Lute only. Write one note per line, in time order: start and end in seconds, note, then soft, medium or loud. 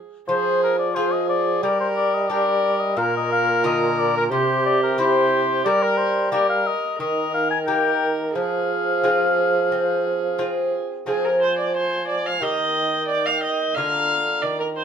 0.00 0.22 G#3 soft
0.00 0.23 C4 soft
0.00 0.23 G#4 soft
0.29 1.60 F3 medium
0.96 1.59 F4 medium
0.96 1.60 G#4 medium
1.63 2.94 G3 medium
2.30 2.93 D4 medium
2.30 2.94 G4 medium
2.97 4.27 A#2 medium
3.64 4.27 D3 medium
3.64 4.28 F4 medium
4.31 5.62 C3 medium
4.98 5.62 C4 medium
4.98 5.62 E4 medium
5.66 6.68 G3 medium
6.32 6.95 A#3 medium
6.32 6.96 G4 medium
7.00 8.32 D#3 medium
7.68 8.32 A#3 medium
7.68 8.32 G4 medium
8.35 10.71 F3 medium
9.03 9.68 C4 medium
9.03 9.68 F4 medium
9.03 9.68 G#4 medium
9.72 10.37 C4 medium
10.38 11.03 C4 medium
10.38 11.03 F4 medium
10.38 11.03 G#4 medium
11.06 12.38 F3 soft
11.06 12.38 C4 soft
11.06 12.38 F4 soft
11.06 12.38 G#4 soft
12.42 13.72 D#3 soft
12.42 13.72 G4 soft
12.42 13.73 A#4 soft
13.77 14.40 D3 soft
13.77 14.84 A#3 soft
13.77 14.84 F4 soft
13.77 14.84 A#4 soft
14.43 14.84 D#3 medium